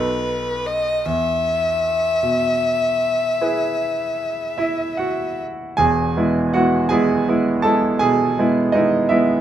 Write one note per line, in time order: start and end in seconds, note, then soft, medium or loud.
0.00 1.01 B1 soft
0.00 1.01 D#4 soft
0.00 1.01 A4 soft
0.00 0.68 B4 medium
0.00 1.01 B4 soft
0.67 1.07 D#5 medium
1.06 5.76 E2 soft
1.06 5.41 E5 medium
2.23 4.12 B2 soft
3.41 4.57 E4 soft
3.41 5.76 G#4 soft
3.41 5.76 B4 soft
4.58 4.97 E4 soft
4.58 4.99 E5 medium
4.97 5.75 F#4 soft
4.97 5.78 F#5 medium
5.77 6.15 E1 medium
5.77 6.16 E2 soft
5.77 6.50 G#4 medium
5.77 6.54 G#5 medium
6.17 6.51 G#3 soft
6.17 6.51 B3 soft
6.17 6.52 E4 soft
6.54 6.89 G#3 soft
6.54 6.89 B3 soft
6.54 6.89 E4 soft
6.54 6.89 F#4 medium
6.54 6.91 F#5 medium
6.89 7.25 G#3 soft
6.89 7.25 B3 soft
6.89 7.25 E4 soft
6.89 7.61 G#4 medium
6.89 7.64 G#5 medium
7.29 7.62 G#3 soft
7.29 7.62 B3 soft
7.29 7.62 E4 soft
7.62 7.98 G#3 soft
7.62 7.99 B3 soft
7.62 7.99 E4 soft
7.62 7.99 A4 medium
7.62 8.01 A5 medium
7.99 8.38 B2 soft
7.99 8.71 G#4 medium
7.99 8.75 G#5 medium
8.39 8.72 G#3 soft
8.39 8.72 B3 soft
8.39 8.73 E4 soft
8.72 9.08 G#3 soft
8.72 9.08 B3 soft
8.72 9.09 D#4 medium
8.72 9.09 E4 soft
8.72 9.11 D#5 medium
9.09 9.41 G#3 soft
9.09 9.41 B3 soft
9.09 9.41 E4 medium
9.09 9.41 E5 medium